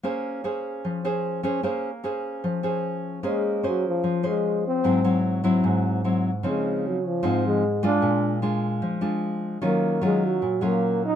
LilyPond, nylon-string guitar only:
\new Staff \with { instrumentName = "Nylon-string guitar" } { \time 4/4 \key bes \minor \tempo 4 = 150 << { <des' aes' c''>4 <des' aes' c''>4. <des' aes' c''>4 <des' aes' c''>8 | <des' aes' c''>8 r8 <des' aes' c''>4. <des' aes' c''>4. | <des' aes' c''>4 <des' aes' c''>4. <des' aes' c''>4. | <ges c' e'>8 <ges c' e'>4 <ges c' e'>4. <ges c' e'>8 r8 |
<f c' ees'>4. r8 <f c' ees'>4 r8 <aes d' f'>8~ | <aes d' f'>4 <aes d' f'>4. <aes d' f'>4. | <ges des' f'>4 <ges des' f'>4 r8 <ges des' f'>4. | } \\ { bes2 f2 | bes2 f2 | bes2 f2 | aes,2 aes,2 |
des2 aes,2 | bes,2 f2 | ees2 bes,2 | } >> }